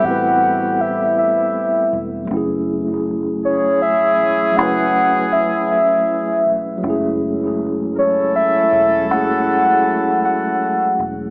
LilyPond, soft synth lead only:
\new Staff \with { instrumentName = "Soft synth lead" } { \time 6/8 \key a \lydian \tempo 4. = 53 fis''4 e''8 e''4 r8 | r4. cis''8 e''4 | fis''4 e''8 e''4 r8 | r4. cis''8 e''4 |
fis''4. fis''4 r8 | }